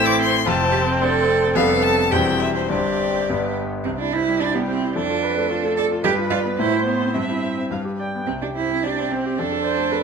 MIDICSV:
0, 0, Header, 1, 5, 480
1, 0, Start_track
1, 0, Key_signature, 0, "major"
1, 0, Tempo, 548948
1, 405, Time_signature, 2, 2, 24, 8
1, 1846, Tempo, 581959
1, 3286, Tempo, 549954
1, 8675, End_track
2, 0, Start_track
2, 0, Title_t, "Violin"
2, 0, Program_c, 0, 40
2, 51, Note_on_c, 0, 86, 121
2, 168, Note_off_c, 0, 86, 0
2, 189, Note_on_c, 0, 84, 122
2, 425, Note_on_c, 0, 81, 117
2, 438, Note_off_c, 0, 84, 0
2, 890, Note_off_c, 0, 81, 0
2, 1357, Note_on_c, 0, 77, 121
2, 1601, Note_on_c, 0, 81, 116
2, 1614, Note_off_c, 0, 77, 0
2, 1849, Note_on_c, 0, 79, 105
2, 1862, Note_off_c, 0, 81, 0
2, 2082, Note_on_c, 0, 76, 104
2, 2094, Note_off_c, 0, 79, 0
2, 2201, Note_off_c, 0, 76, 0
2, 2206, Note_on_c, 0, 72, 89
2, 2317, Note_on_c, 0, 74, 97
2, 2330, Note_off_c, 0, 72, 0
2, 3048, Note_off_c, 0, 74, 0
2, 3287, Note_on_c, 0, 67, 71
2, 4208, Note_off_c, 0, 67, 0
2, 4239, Note_on_c, 0, 69, 71
2, 5161, Note_off_c, 0, 69, 0
2, 5192, Note_on_c, 0, 71, 72
2, 5634, Note_off_c, 0, 71, 0
2, 5674, Note_on_c, 0, 72, 77
2, 6603, Note_off_c, 0, 72, 0
2, 6644, Note_on_c, 0, 71, 57
2, 6931, Note_off_c, 0, 71, 0
2, 7137, Note_on_c, 0, 72, 61
2, 8071, Note_off_c, 0, 72, 0
2, 8099, Note_on_c, 0, 69, 63
2, 8675, Note_off_c, 0, 69, 0
2, 8675, End_track
3, 0, Start_track
3, 0, Title_t, "Viola"
3, 0, Program_c, 1, 41
3, 0, Note_on_c, 1, 60, 94
3, 370, Note_off_c, 1, 60, 0
3, 408, Note_on_c, 1, 60, 97
3, 1354, Note_on_c, 1, 59, 82
3, 1367, Note_off_c, 1, 60, 0
3, 1846, Note_off_c, 1, 59, 0
3, 1849, Note_on_c, 1, 60, 75
3, 2319, Note_off_c, 1, 60, 0
3, 2336, Note_on_c, 1, 60, 65
3, 2819, Note_on_c, 1, 59, 63
3, 2832, Note_off_c, 1, 60, 0
3, 3121, Note_off_c, 1, 59, 0
3, 3768, Note_on_c, 1, 67, 63
3, 4242, Note_on_c, 1, 69, 71
3, 4256, Note_off_c, 1, 67, 0
3, 4479, Note_on_c, 1, 71, 80
3, 4492, Note_off_c, 1, 69, 0
3, 4720, Note_off_c, 1, 71, 0
3, 4725, Note_on_c, 1, 69, 79
3, 5191, Note_off_c, 1, 69, 0
3, 5202, Note_on_c, 1, 71, 86
3, 5677, Note_on_c, 1, 72, 77
3, 5690, Note_off_c, 1, 71, 0
3, 6156, Note_on_c, 1, 76, 70
3, 6169, Note_off_c, 1, 72, 0
3, 6590, Note_off_c, 1, 76, 0
3, 6652, Note_on_c, 1, 77, 59
3, 6722, Note_off_c, 1, 77, 0
3, 6898, Note_on_c, 1, 79, 56
3, 7131, Note_off_c, 1, 79, 0
3, 7625, Note_on_c, 1, 67, 55
3, 8108, Note_on_c, 1, 69, 68
3, 8121, Note_off_c, 1, 67, 0
3, 8335, Note_off_c, 1, 69, 0
3, 8340, Note_on_c, 1, 72, 68
3, 8573, Note_on_c, 1, 71, 67
3, 8586, Note_off_c, 1, 72, 0
3, 8675, Note_off_c, 1, 71, 0
3, 8675, End_track
4, 0, Start_track
4, 0, Title_t, "Cello"
4, 0, Program_c, 2, 42
4, 0, Note_on_c, 2, 64, 105
4, 387, Note_off_c, 2, 64, 0
4, 392, Note_on_c, 2, 65, 94
4, 462, Note_off_c, 2, 65, 0
4, 627, Note_on_c, 2, 67, 96
4, 697, Note_off_c, 2, 67, 0
4, 873, Note_on_c, 2, 69, 101
4, 1340, Note_off_c, 2, 69, 0
4, 1348, Note_on_c, 2, 69, 115
4, 1839, Note_on_c, 2, 67, 86
4, 1852, Note_off_c, 2, 69, 0
4, 2320, Note_off_c, 2, 67, 0
4, 2325, Note_on_c, 2, 67, 82
4, 3037, Note_off_c, 2, 67, 0
4, 3274, Note_on_c, 2, 60, 80
4, 3324, Note_off_c, 2, 60, 0
4, 3400, Note_on_c, 2, 62, 82
4, 3527, Note_on_c, 2, 64, 96
4, 3540, Note_off_c, 2, 62, 0
4, 3762, Note_on_c, 2, 62, 88
4, 3775, Note_off_c, 2, 64, 0
4, 3887, Note_on_c, 2, 59, 76
4, 3901, Note_off_c, 2, 62, 0
4, 3991, Note_off_c, 2, 59, 0
4, 3996, Note_on_c, 2, 60, 81
4, 4229, Note_off_c, 2, 60, 0
4, 4234, Note_on_c, 2, 62, 97
4, 4942, Note_off_c, 2, 62, 0
4, 4954, Note_on_c, 2, 69, 107
4, 5024, Note_off_c, 2, 69, 0
4, 5189, Note_on_c, 2, 67, 112
4, 5259, Note_off_c, 2, 67, 0
4, 5420, Note_on_c, 2, 65, 101
4, 5490, Note_off_c, 2, 65, 0
4, 5660, Note_on_c, 2, 64, 91
4, 5895, Note_off_c, 2, 64, 0
4, 5900, Note_on_c, 2, 59, 78
4, 6146, Note_on_c, 2, 60, 65
4, 6159, Note_off_c, 2, 59, 0
4, 6634, Note_off_c, 2, 60, 0
4, 7134, Note_on_c, 2, 60, 80
4, 7182, Note_off_c, 2, 60, 0
4, 7265, Note_on_c, 2, 62, 63
4, 7312, Note_off_c, 2, 62, 0
4, 7385, Note_on_c, 2, 64, 86
4, 7631, Note_on_c, 2, 62, 78
4, 7644, Note_off_c, 2, 64, 0
4, 7866, Note_on_c, 2, 60, 76
4, 7879, Note_off_c, 2, 62, 0
4, 8107, Note_on_c, 2, 62, 96
4, 8120, Note_off_c, 2, 60, 0
4, 8675, Note_off_c, 2, 62, 0
4, 8675, End_track
5, 0, Start_track
5, 0, Title_t, "Grand piano"
5, 0, Program_c, 3, 0
5, 0, Control_c, 3, 64, 127
5, 0, Note_on_c, 3, 33, 82
5, 0, Note_on_c, 3, 45, 79
5, 0, Note_on_c, 3, 57, 76
5, 0, Note_on_c, 3, 60, 67
5, 0, Note_on_c, 3, 72, 78
5, 373, Note_off_c, 3, 57, 0
5, 376, Note_off_c, 3, 60, 0
5, 377, Note_off_c, 3, 72, 0
5, 382, Note_off_c, 3, 33, 0
5, 384, Note_off_c, 3, 45, 0
5, 405, Note_on_c, 3, 41, 88
5, 409, Note_on_c, 3, 29, 81
5, 420, Control_c, 3, 64, 0
5, 543, Control_c, 3, 64, 127
5, 881, Note_on_c, 3, 57, 70
5, 889, Note_on_c, 3, 62, 67
5, 889, Note_on_c, 3, 72, 78
5, 1319, Note_off_c, 3, 57, 0
5, 1323, Note_off_c, 3, 62, 0
5, 1323, Note_off_c, 3, 72, 0
5, 1326, Note_off_c, 3, 41, 0
5, 1328, Note_off_c, 3, 29, 0
5, 1362, Note_on_c, 3, 41, 87
5, 1367, Note_on_c, 3, 29, 72
5, 1367, Note_on_c, 3, 55, 59
5, 1371, Note_on_c, 3, 62, 56
5, 1372, Control_c, 3, 64, 0
5, 1375, Note_on_c, 3, 71, 57
5, 1534, Control_c, 3, 64, 127
5, 1817, Note_off_c, 3, 55, 0
5, 1819, Note_off_c, 3, 62, 0
5, 1821, Note_off_c, 3, 71, 0
5, 1835, Note_off_c, 3, 41, 0
5, 1838, Note_off_c, 3, 29, 0
5, 1856, Note_on_c, 3, 28, 73
5, 1857, Note_on_c, 3, 55, 61
5, 1859, Note_on_c, 3, 40, 84
5, 1860, Note_on_c, 3, 60, 61
5, 1862, Control_c, 3, 64, 0
5, 1869, Note_on_c, 3, 72, 58
5, 2019, Control_c, 3, 64, 127
5, 2299, Note_off_c, 3, 55, 0
5, 2301, Note_off_c, 3, 60, 0
5, 2305, Note_off_c, 3, 72, 0
5, 2317, Note_off_c, 3, 28, 0
5, 2319, Note_off_c, 3, 40, 0
5, 2329, Note_on_c, 3, 55, 51
5, 2331, Note_on_c, 3, 31, 63
5, 2332, Note_on_c, 3, 43, 67
5, 2336, Note_on_c, 3, 62, 52
5, 2340, Note_on_c, 3, 72, 53
5, 2342, Control_c, 3, 64, 0
5, 2475, Control_c, 3, 64, 127
5, 2782, Note_off_c, 3, 55, 0
5, 2785, Note_off_c, 3, 62, 0
5, 2787, Note_off_c, 3, 72, 0
5, 2801, Note_off_c, 3, 31, 0
5, 2801, Note_off_c, 3, 43, 0
5, 2825, Note_on_c, 3, 43, 70
5, 2825, Note_on_c, 3, 55, 53
5, 2827, Note_on_c, 3, 31, 62
5, 2828, Note_on_c, 3, 62, 51
5, 2829, Control_c, 3, 64, 0
5, 2834, Note_on_c, 3, 71, 56
5, 2983, Control_c, 3, 64, 127
5, 3259, Note_off_c, 3, 55, 0
5, 3261, Note_off_c, 3, 62, 0
5, 3263, Note_off_c, 3, 71, 0
5, 3278, Note_off_c, 3, 43, 0
5, 3279, Note_off_c, 3, 31, 0
5, 3286, Note_on_c, 3, 36, 64
5, 3303, Control_c, 3, 64, 0
5, 3416, Note_on_c, 3, 64, 49
5, 3471, Control_c, 3, 64, 127
5, 3542, Note_on_c, 3, 72, 54
5, 3603, Note_off_c, 3, 64, 0
5, 3656, Note_on_c, 3, 55, 49
5, 3725, Note_off_c, 3, 72, 0
5, 3769, Note_on_c, 3, 64, 57
5, 3841, Note_off_c, 3, 55, 0
5, 3887, Note_on_c, 3, 55, 54
5, 3957, Note_off_c, 3, 64, 0
5, 4005, Note_on_c, 3, 72, 57
5, 4076, Note_off_c, 3, 55, 0
5, 4127, Note_on_c, 3, 64, 54
5, 4196, Note_off_c, 3, 72, 0
5, 4214, Note_off_c, 3, 36, 0
5, 4245, Note_off_c, 3, 64, 0
5, 4247, Note_on_c, 3, 41, 66
5, 4258, Control_c, 3, 64, 0
5, 4373, Note_on_c, 3, 65, 52
5, 4399, Control_c, 3, 64, 127
5, 4492, Note_on_c, 3, 74, 60
5, 4559, Note_off_c, 3, 65, 0
5, 4612, Note_on_c, 3, 57, 53
5, 4679, Note_off_c, 3, 74, 0
5, 4724, Note_on_c, 3, 65, 67
5, 4798, Note_off_c, 3, 57, 0
5, 4846, Note_on_c, 3, 57, 65
5, 4914, Note_off_c, 3, 65, 0
5, 4963, Note_on_c, 3, 74, 65
5, 5034, Note_off_c, 3, 57, 0
5, 5083, Note_on_c, 3, 65, 60
5, 5152, Note_off_c, 3, 74, 0
5, 5171, Note_off_c, 3, 41, 0
5, 5197, Note_on_c, 3, 43, 76
5, 5200, Note_off_c, 3, 65, 0
5, 5215, Control_c, 3, 64, 0
5, 5313, Note_on_c, 3, 65, 63
5, 5368, Control_c, 3, 64, 127
5, 5435, Note_on_c, 3, 74, 66
5, 5503, Note_off_c, 3, 65, 0
5, 5549, Note_on_c, 3, 59, 56
5, 5623, Note_off_c, 3, 74, 0
5, 5656, Note_off_c, 3, 43, 0
5, 5669, Note_off_c, 3, 59, 0
5, 5674, Note_on_c, 3, 45, 77
5, 5688, Control_c, 3, 64, 0
5, 5800, Note_on_c, 3, 64, 59
5, 5840, Control_c, 3, 64, 127
5, 5918, Note_on_c, 3, 72, 56
5, 5987, Note_off_c, 3, 64, 0
5, 6048, Note_on_c, 3, 60, 48
5, 6106, Note_off_c, 3, 72, 0
5, 6138, Note_off_c, 3, 45, 0
5, 6159, Note_off_c, 3, 60, 0
5, 6164, Note_on_c, 3, 43, 54
5, 6165, Control_c, 3, 64, 0
5, 6293, Note_on_c, 3, 64, 48
5, 6295, Control_c, 3, 64, 127
5, 6405, Note_on_c, 3, 72, 48
5, 6476, Note_off_c, 3, 64, 0
5, 6534, Note_on_c, 3, 60, 42
5, 6593, Note_off_c, 3, 72, 0
5, 6628, Note_off_c, 3, 43, 0
5, 6645, Note_off_c, 3, 60, 0
5, 6649, Note_on_c, 3, 43, 57
5, 6654, Control_c, 3, 64, 0
5, 6771, Note_on_c, 3, 67, 46
5, 6804, Control_c, 3, 64, 127
5, 6897, Note_on_c, 3, 74, 50
5, 6962, Note_off_c, 3, 67, 0
5, 7035, Note_on_c, 3, 59, 43
5, 7086, Note_off_c, 3, 74, 0
5, 7120, Note_off_c, 3, 43, 0
5, 7143, Note_off_c, 3, 59, 0
5, 7144, Note_on_c, 3, 36, 52
5, 7145, Control_c, 3, 64, 0
5, 7274, Note_on_c, 3, 67, 44
5, 7290, Control_c, 3, 64, 127
5, 7400, Note_on_c, 3, 72, 45
5, 7461, Note_off_c, 3, 67, 0
5, 7525, Note_on_c, 3, 60, 39
5, 7585, Note_off_c, 3, 72, 0
5, 7653, Note_on_c, 3, 67, 52
5, 7708, Note_off_c, 3, 60, 0
5, 7764, Note_on_c, 3, 60, 46
5, 7831, Note_off_c, 3, 67, 0
5, 7885, Note_on_c, 3, 72, 55
5, 7945, Note_off_c, 3, 60, 0
5, 7999, Note_on_c, 3, 67, 52
5, 8065, Note_off_c, 3, 72, 0
5, 8081, Note_off_c, 3, 36, 0
5, 8109, Note_off_c, 3, 67, 0
5, 8117, Note_on_c, 3, 41, 60
5, 8118, Control_c, 3, 64, 0
5, 8232, Note_on_c, 3, 69, 46
5, 8240, Control_c, 3, 64, 127
5, 8335, Note_on_c, 3, 74, 54
5, 8413, Note_off_c, 3, 69, 0
5, 8458, Note_on_c, 3, 57, 48
5, 8523, Note_off_c, 3, 74, 0
5, 8580, Note_on_c, 3, 69, 54
5, 8643, Note_off_c, 3, 57, 0
5, 8675, Note_off_c, 3, 41, 0
5, 8675, Note_off_c, 3, 69, 0
5, 8675, End_track
0, 0, End_of_file